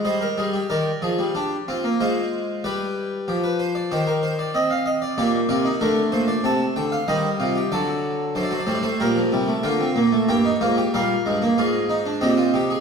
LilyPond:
<<
  \new Staff \with { instrumentName = "Harpsichord" } { \time 4/4 \key c \minor \tempo 4 = 94 << { ees''4 d''2 c''4 | b'4 g'16 b'16 c''16 d''16 c''16 bes'16 c''16 d''16 ees''16 f''16 ees''16 d''16 | d''8 d''8 bes'8 c''16 d''16 a''8 g''16 f''16 ees''4 | d''4 c''32 d''32 c''32 d''32 c''32 d''32 c''16 bes'4 g''4 |
\key ees \major g''4 f''2 ees''4 | } \\ { c''16 bes'16 aes'16 g'16 bes'8 aes'8 g'8 f'8 f'4 | g'2 g'2 | g'8 f'16 ees'16 d'4 c'4 ees'8 f'16 g'16 | a'2 g'4 f'4 |
g'16 ees'16 f'16 g'16 bes'4 aes'4 g'16 f'16 g'16 aes'16 | } >> }
  \new Staff \with { instrumentName = "Harpsichord" } { \clef bass \time 4/4 \key c \minor << { g8 g8 ees8 f16 g16 d'8 c'16 bes16 aes4 | g4 f4 ees4 c'4 | bes4 a2 g4 | fis4 d16 fis16 g16 a16 g16 f16 g16 a16 bes16 c'16 bes16 a16 |
\key ees \major bes8 bes8 g8 aes16 bes16 f'8 ees'16 d'16 c'4 | } \\ { r1 | r1 | bes,8 c8 d8 bes,8 c8 d8 ees8 c8 | d4 fis,8 a,8 bes,8 c8 d8 bes,8 |
g,8 aes,8 bes,8 g,8 aes,4 bes,8 c8 | } >> }
>>